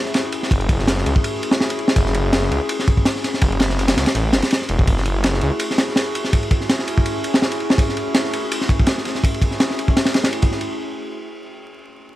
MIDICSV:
0, 0, Header, 1, 4, 480
1, 0, Start_track
1, 0, Key_signature, 3, "minor"
1, 0, Tempo, 363636
1, 677, Time_signature, 4, 2, 24, 8
1, 16047, End_track
2, 0, Start_track
2, 0, Title_t, "Ambient pad"
2, 0, Program_c, 0, 92
2, 676, Note_on_c, 0, 57, 86
2, 676, Note_on_c, 0, 66, 80
2, 677, Note_on_c, 0, 61, 78
2, 678, Note_on_c, 0, 68, 94
2, 679, Note_on_c, 0, 64, 78
2, 1850, Note_off_c, 0, 57, 0
2, 1850, Note_off_c, 0, 61, 0
2, 1850, Note_off_c, 0, 66, 0
2, 1851, Note_off_c, 0, 64, 0
2, 1851, Note_off_c, 0, 68, 0
2, 2590, Note_on_c, 0, 61, 90
2, 2591, Note_on_c, 0, 57, 102
2, 2591, Note_on_c, 0, 64, 90
2, 2594, Note_on_c, 0, 66, 92
2, 2594, Note_on_c, 0, 68, 109
2, 3766, Note_off_c, 0, 61, 0
2, 3767, Note_off_c, 0, 57, 0
2, 3767, Note_off_c, 0, 64, 0
2, 3768, Note_off_c, 0, 66, 0
2, 3769, Note_off_c, 0, 68, 0
2, 4513, Note_on_c, 0, 61, 81
2, 4513, Note_on_c, 0, 64, 79
2, 4513, Note_on_c, 0, 66, 79
2, 4514, Note_on_c, 0, 57, 87
2, 4514, Note_on_c, 0, 68, 98
2, 5688, Note_off_c, 0, 61, 0
2, 5688, Note_off_c, 0, 64, 0
2, 5688, Note_off_c, 0, 66, 0
2, 5689, Note_off_c, 0, 57, 0
2, 5689, Note_off_c, 0, 68, 0
2, 6439, Note_on_c, 0, 57, 103
2, 6439, Note_on_c, 0, 66, 90
2, 6440, Note_on_c, 0, 61, 91
2, 6440, Note_on_c, 0, 68, 112
2, 6441, Note_on_c, 0, 64, 90
2, 7611, Note_off_c, 0, 57, 0
2, 7611, Note_off_c, 0, 66, 0
2, 7612, Note_off_c, 0, 61, 0
2, 7612, Note_off_c, 0, 64, 0
2, 7612, Note_off_c, 0, 68, 0
2, 8361, Note_on_c, 0, 64, 79
2, 8362, Note_on_c, 0, 61, 80
2, 8364, Note_on_c, 0, 57, 85
2, 8364, Note_on_c, 0, 66, 83
2, 8364, Note_on_c, 0, 68, 94
2, 9532, Note_off_c, 0, 64, 0
2, 9533, Note_off_c, 0, 57, 0
2, 9533, Note_off_c, 0, 61, 0
2, 9533, Note_off_c, 0, 66, 0
2, 9533, Note_off_c, 0, 68, 0
2, 10271, Note_on_c, 0, 68, 109
2, 10272, Note_on_c, 0, 57, 98
2, 10273, Note_on_c, 0, 61, 94
2, 10273, Note_on_c, 0, 64, 89
2, 10276, Note_on_c, 0, 66, 90
2, 11447, Note_off_c, 0, 68, 0
2, 11448, Note_off_c, 0, 57, 0
2, 11448, Note_off_c, 0, 61, 0
2, 11448, Note_off_c, 0, 64, 0
2, 11449, Note_off_c, 0, 66, 0
2, 12201, Note_on_c, 0, 64, 82
2, 12203, Note_on_c, 0, 57, 87
2, 12203, Note_on_c, 0, 68, 97
2, 12204, Note_on_c, 0, 61, 80
2, 12204, Note_on_c, 0, 66, 80
2, 13372, Note_off_c, 0, 64, 0
2, 13373, Note_off_c, 0, 57, 0
2, 13373, Note_off_c, 0, 61, 0
2, 13373, Note_off_c, 0, 68, 0
2, 13374, Note_off_c, 0, 66, 0
2, 16047, End_track
3, 0, Start_track
3, 0, Title_t, "Detuned saw bass"
3, 0, Program_c, 1, 39
3, 674, Note_on_c, 1, 30, 100
3, 1377, Note_off_c, 1, 30, 0
3, 1401, Note_on_c, 1, 37, 84
3, 1514, Note_off_c, 1, 37, 0
3, 2589, Note_on_c, 1, 30, 100
3, 3295, Note_off_c, 1, 30, 0
3, 3317, Note_on_c, 1, 37, 83
3, 3432, Note_off_c, 1, 37, 0
3, 4516, Note_on_c, 1, 30, 100
3, 5218, Note_off_c, 1, 30, 0
3, 5238, Note_on_c, 1, 37, 84
3, 5353, Note_off_c, 1, 37, 0
3, 5476, Note_on_c, 1, 33, 100
3, 5715, Note_on_c, 1, 30, 98
3, 5735, Note_off_c, 1, 33, 0
3, 5831, Note_off_c, 1, 30, 0
3, 6194, Note_on_c, 1, 28, 88
3, 6413, Note_off_c, 1, 28, 0
3, 6435, Note_on_c, 1, 30, 101
3, 7138, Note_off_c, 1, 30, 0
3, 7160, Note_on_c, 1, 37, 87
3, 7274, Note_off_c, 1, 37, 0
3, 16047, End_track
4, 0, Start_track
4, 0, Title_t, "Drums"
4, 68, Note_on_c, 9, 38, 37
4, 186, Note_on_c, 9, 51, 80
4, 196, Note_off_c, 9, 38, 0
4, 196, Note_on_c, 9, 38, 94
4, 318, Note_off_c, 9, 51, 0
4, 328, Note_off_c, 9, 38, 0
4, 427, Note_on_c, 9, 51, 77
4, 559, Note_off_c, 9, 51, 0
4, 565, Note_on_c, 9, 38, 38
4, 673, Note_on_c, 9, 36, 114
4, 678, Note_on_c, 9, 51, 86
4, 697, Note_off_c, 9, 38, 0
4, 799, Note_off_c, 9, 51, 0
4, 799, Note_on_c, 9, 51, 45
4, 805, Note_off_c, 9, 36, 0
4, 908, Note_off_c, 9, 51, 0
4, 908, Note_on_c, 9, 51, 74
4, 911, Note_on_c, 9, 36, 87
4, 1040, Note_off_c, 9, 51, 0
4, 1041, Note_on_c, 9, 38, 36
4, 1043, Note_off_c, 9, 36, 0
4, 1154, Note_off_c, 9, 38, 0
4, 1154, Note_on_c, 9, 38, 126
4, 1162, Note_on_c, 9, 51, 95
4, 1285, Note_off_c, 9, 38, 0
4, 1285, Note_on_c, 9, 38, 54
4, 1294, Note_off_c, 9, 51, 0
4, 1401, Note_on_c, 9, 51, 70
4, 1417, Note_off_c, 9, 38, 0
4, 1529, Note_on_c, 9, 36, 100
4, 1533, Note_off_c, 9, 51, 0
4, 1639, Note_on_c, 9, 51, 97
4, 1661, Note_off_c, 9, 36, 0
4, 1771, Note_off_c, 9, 51, 0
4, 1885, Note_on_c, 9, 51, 70
4, 1999, Note_on_c, 9, 38, 107
4, 2017, Note_off_c, 9, 51, 0
4, 2118, Note_off_c, 9, 38, 0
4, 2118, Note_on_c, 9, 38, 107
4, 2245, Note_on_c, 9, 51, 81
4, 2250, Note_off_c, 9, 38, 0
4, 2359, Note_off_c, 9, 51, 0
4, 2359, Note_on_c, 9, 51, 42
4, 2480, Note_on_c, 9, 38, 101
4, 2491, Note_off_c, 9, 51, 0
4, 2587, Note_on_c, 9, 51, 84
4, 2589, Note_on_c, 9, 36, 104
4, 2612, Note_off_c, 9, 38, 0
4, 2716, Note_on_c, 9, 38, 38
4, 2719, Note_off_c, 9, 51, 0
4, 2721, Note_off_c, 9, 36, 0
4, 2830, Note_on_c, 9, 51, 76
4, 2848, Note_off_c, 9, 38, 0
4, 2962, Note_off_c, 9, 51, 0
4, 3072, Note_on_c, 9, 38, 127
4, 3073, Note_on_c, 9, 51, 87
4, 3197, Note_off_c, 9, 38, 0
4, 3197, Note_on_c, 9, 38, 41
4, 3205, Note_off_c, 9, 51, 0
4, 3319, Note_on_c, 9, 51, 67
4, 3329, Note_off_c, 9, 38, 0
4, 3451, Note_off_c, 9, 51, 0
4, 3551, Note_on_c, 9, 51, 88
4, 3683, Note_off_c, 9, 51, 0
4, 3686, Note_on_c, 9, 38, 38
4, 3795, Note_on_c, 9, 51, 66
4, 3797, Note_on_c, 9, 36, 99
4, 3818, Note_off_c, 9, 38, 0
4, 3925, Note_off_c, 9, 36, 0
4, 3925, Note_on_c, 9, 36, 101
4, 3927, Note_off_c, 9, 51, 0
4, 4031, Note_on_c, 9, 38, 122
4, 4036, Note_on_c, 9, 51, 95
4, 4057, Note_off_c, 9, 36, 0
4, 4163, Note_off_c, 9, 38, 0
4, 4163, Note_on_c, 9, 38, 52
4, 4168, Note_off_c, 9, 51, 0
4, 4278, Note_off_c, 9, 38, 0
4, 4278, Note_on_c, 9, 38, 48
4, 4279, Note_on_c, 9, 51, 73
4, 4408, Note_off_c, 9, 38, 0
4, 4408, Note_on_c, 9, 38, 42
4, 4411, Note_off_c, 9, 51, 0
4, 4508, Note_on_c, 9, 51, 94
4, 4515, Note_on_c, 9, 36, 124
4, 4540, Note_off_c, 9, 38, 0
4, 4640, Note_off_c, 9, 51, 0
4, 4647, Note_off_c, 9, 36, 0
4, 4649, Note_on_c, 9, 51, 46
4, 4748, Note_off_c, 9, 51, 0
4, 4748, Note_on_c, 9, 51, 74
4, 4758, Note_on_c, 9, 38, 111
4, 4877, Note_off_c, 9, 38, 0
4, 4877, Note_on_c, 9, 38, 55
4, 4880, Note_off_c, 9, 51, 0
4, 4988, Note_off_c, 9, 38, 0
4, 4988, Note_on_c, 9, 38, 44
4, 5003, Note_on_c, 9, 51, 59
4, 5120, Note_off_c, 9, 38, 0
4, 5121, Note_off_c, 9, 51, 0
4, 5121, Note_on_c, 9, 51, 92
4, 5125, Note_on_c, 9, 38, 104
4, 5241, Note_off_c, 9, 38, 0
4, 5241, Note_on_c, 9, 38, 98
4, 5247, Note_off_c, 9, 51, 0
4, 5247, Note_on_c, 9, 51, 86
4, 5358, Note_off_c, 9, 51, 0
4, 5358, Note_on_c, 9, 51, 73
4, 5371, Note_off_c, 9, 38, 0
4, 5371, Note_on_c, 9, 38, 106
4, 5476, Note_off_c, 9, 51, 0
4, 5476, Note_on_c, 9, 51, 84
4, 5503, Note_off_c, 9, 38, 0
4, 5608, Note_off_c, 9, 51, 0
4, 5713, Note_on_c, 9, 38, 110
4, 5718, Note_on_c, 9, 51, 79
4, 5837, Note_off_c, 9, 51, 0
4, 5837, Note_on_c, 9, 51, 84
4, 5845, Note_off_c, 9, 38, 0
4, 5848, Note_on_c, 9, 38, 95
4, 5948, Note_off_c, 9, 51, 0
4, 5948, Note_on_c, 9, 51, 84
4, 5973, Note_off_c, 9, 38, 0
4, 5973, Note_on_c, 9, 38, 101
4, 6080, Note_off_c, 9, 51, 0
4, 6092, Note_off_c, 9, 38, 0
4, 6092, Note_on_c, 9, 38, 35
4, 6186, Note_on_c, 9, 51, 65
4, 6224, Note_off_c, 9, 38, 0
4, 6318, Note_off_c, 9, 51, 0
4, 6324, Note_on_c, 9, 36, 98
4, 6433, Note_on_c, 9, 51, 79
4, 6435, Note_off_c, 9, 36, 0
4, 6435, Note_on_c, 9, 36, 117
4, 6560, Note_on_c, 9, 38, 39
4, 6565, Note_off_c, 9, 51, 0
4, 6567, Note_off_c, 9, 36, 0
4, 6673, Note_on_c, 9, 51, 70
4, 6692, Note_off_c, 9, 38, 0
4, 6805, Note_off_c, 9, 51, 0
4, 6912, Note_on_c, 9, 51, 89
4, 6922, Note_on_c, 9, 38, 114
4, 7044, Note_off_c, 9, 51, 0
4, 7046, Note_off_c, 9, 38, 0
4, 7046, Note_on_c, 9, 38, 44
4, 7145, Note_on_c, 9, 51, 64
4, 7178, Note_off_c, 9, 38, 0
4, 7277, Note_off_c, 9, 51, 0
4, 7385, Note_on_c, 9, 51, 88
4, 7517, Note_off_c, 9, 51, 0
4, 7531, Note_on_c, 9, 38, 40
4, 7631, Note_off_c, 9, 38, 0
4, 7631, Note_on_c, 9, 38, 107
4, 7634, Note_on_c, 9, 51, 79
4, 7763, Note_off_c, 9, 38, 0
4, 7764, Note_on_c, 9, 38, 39
4, 7766, Note_off_c, 9, 51, 0
4, 7864, Note_off_c, 9, 38, 0
4, 7864, Note_on_c, 9, 38, 104
4, 7881, Note_on_c, 9, 51, 85
4, 7996, Note_off_c, 9, 38, 0
4, 8013, Note_off_c, 9, 51, 0
4, 8117, Note_on_c, 9, 51, 82
4, 8240, Note_on_c, 9, 38, 41
4, 8249, Note_off_c, 9, 51, 0
4, 8354, Note_on_c, 9, 51, 94
4, 8356, Note_on_c, 9, 36, 108
4, 8372, Note_off_c, 9, 38, 0
4, 8484, Note_off_c, 9, 51, 0
4, 8484, Note_on_c, 9, 51, 45
4, 8488, Note_off_c, 9, 36, 0
4, 8590, Note_off_c, 9, 51, 0
4, 8590, Note_on_c, 9, 51, 68
4, 8592, Note_on_c, 9, 36, 98
4, 8718, Note_on_c, 9, 38, 35
4, 8722, Note_off_c, 9, 51, 0
4, 8724, Note_off_c, 9, 36, 0
4, 8836, Note_on_c, 9, 51, 82
4, 8837, Note_off_c, 9, 38, 0
4, 8837, Note_on_c, 9, 38, 106
4, 8961, Note_off_c, 9, 38, 0
4, 8961, Note_on_c, 9, 38, 54
4, 8968, Note_off_c, 9, 51, 0
4, 9076, Note_on_c, 9, 51, 74
4, 9093, Note_off_c, 9, 38, 0
4, 9208, Note_off_c, 9, 51, 0
4, 9208, Note_on_c, 9, 36, 86
4, 9314, Note_on_c, 9, 51, 85
4, 9340, Note_off_c, 9, 36, 0
4, 9446, Note_off_c, 9, 51, 0
4, 9558, Note_on_c, 9, 51, 74
4, 9690, Note_off_c, 9, 51, 0
4, 9690, Note_on_c, 9, 38, 115
4, 9795, Note_off_c, 9, 38, 0
4, 9795, Note_on_c, 9, 38, 113
4, 9920, Note_on_c, 9, 51, 74
4, 9927, Note_off_c, 9, 38, 0
4, 10034, Note_off_c, 9, 51, 0
4, 10034, Note_on_c, 9, 51, 43
4, 10165, Note_on_c, 9, 38, 102
4, 10166, Note_off_c, 9, 51, 0
4, 10271, Note_on_c, 9, 36, 121
4, 10279, Note_on_c, 9, 51, 90
4, 10297, Note_off_c, 9, 38, 0
4, 10403, Note_off_c, 9, 36, 0
4, 10411, Note_off_c, 9, 51, 0
4, 10413, Note_on_c, 9, 38, 38
4, 10516, Note_on_c, 9, 51, 64
4, 10545, Note_off_c, 9, 38, 0
4, 10648, Note_off_c, 9, 51, 0
4, 10750, Note_on_c, 9, 51, 84
4, 10752, Note_on_c, 9, 38, 121
4, 10881, Note_off_c, 9, 38, 0
4, 10881, Note_on_c, 9, 38, 42
4, 10882, Note_off_c, 9, 51, 0
4, 11000, Note_on_c, 9, 51, 76
4, 11013, Note_off_c, 9, 38, 0
4, 11132, Note_off_c, 9, 51, 0
4, 11240, Note_on_c, 9, 51, 94
4, 11368, Note_on_c, 9, 38, 38
4, 11372, Note_off_c, 9, 51, 0
4, 11474, Note_on_c, 9, 36, 90
4, 11481, Note_on_c, 9, 51, 64
4, 11500, Note_off_c, 9, 38, 0
4, 11606, Note_off_c, 9, 36, 0
4, 11610, Note_on_c, 9, 36, 105
4, 11613, Note_off_c, 9, 51, 0
4, 11703, Note_on_c, 9, 51, 98
4, 11709, Note_on_c, 9, 38, 127
4, 11742, Note_off_c, 9, 36, 0
4, 11835, Note_off_c, 9, 51, 0
4, 11841, Note_off_c, 9, 38, 0
4, 11850, Note_on_c, 9, 38, 51
4, 11948, Note_on_c, 9, 51, 68
4, 11962, Note_off_c, 9, 38, 0
4, 11962, Note_on_c, 9, 38, 44
4, 12077, Note_off_c, 9, 38, 0
4, 12077, Note_on_c, 9, 38, 41
4, 12080, Note_off_c, 9, 51, 0
4, 12192, Note_on_c, 9, 36, 109
4, 12201, Note_on_c, 9, 51, 96
4, 12209, Note_off_c, 9, 38, 0
4, 12324, Note_off_c, 9, 36, 0
4, 12332, Note_off_c, 9, 51, 0
4, 12332, Note_on_c, 9, 51, 46
4, 12428, Note_on_c, 9, 36, 95
4, 12433, Note_off_c, 9, 51, 0
4, 12433, Note_on_c, 9, 51, 75
4, 12553, Note_on_c, 9, 38, 36
4, 12560, Note_off_c, 9, 36, 0
4, 12565, Note_off_c, 9, 51, 0
4, 12672, Note_off_c, 9, 38, 0
4, 12672, Note_on_c, 9, 38, 127
4, 12673, Note_on_c, 9, 51, 87
4, 12804, Note_off_c, 9, 38, 0
4, 12805, Note_off_c, 9, 51, 0
4, 12807, Note_on_c, 9, 38, 58
4, 12918, Note_on_c, 9, 51, 66
4, 12939, Note_off_c, 9, 38, 0
4, 13043, Note_on_c, 9, 36, 92
4, 13050, Note_off_c, 9, 51, 0
4, 13155, Note_on_c, 9, 38, 117
4, 13156, Note_on_c, 9, 51, 88
4, 13175, Note_off_c, 9, 36, 0
4, 13271, Note_off_c, 9, 38, 0
4, 13271, Note_on_c, 9, 38, 109
4, 13284, Note_off_c, 9, 51, 0
4, 13284, Note_on_c, 9, 51, 75
4, 13386, Note_off_c, 9, 51, 0
4, 13386, Note_on_c, 9, 51, 75
4, 13396, Note_off_c, 9, 38, 0
4, 13396, Note_on_c, 9, 38, 106
4, 13513, Note_off_c, 9, 38, 0
4, 13513, Note_on_c, 9, 38, 117
4, 13518, Note_off_c, 9, 51, 0
4, 13523, Note_on_c, 9, 51, 83
4, 13630, Note_off_c, 9, 51, 0
4, 13630, Note_on_c, 9, 51, 63
4, 13645, Note_off_c, 9, 38, 0
4, 13758, Note_off_c, 9, 51, 0
4, 13758, Note_on_c, 9, 51, 71
4, 13765, Note_on_c, 9, 36, 89
4, 13880, Note_on_c, 9, 38, 38
4, 13890, Note_off_c, 9, 51, 0
4, 13897, Note_off_c, 9, 36, 0
4, 14003, Note_on_c, 9, 51, 58
4, 14012, Note_off_c, 9, 38, 0
4, 14135, Note_off_c, 9, 51, 0
4, 16047, End_track
0, 0, End_of_file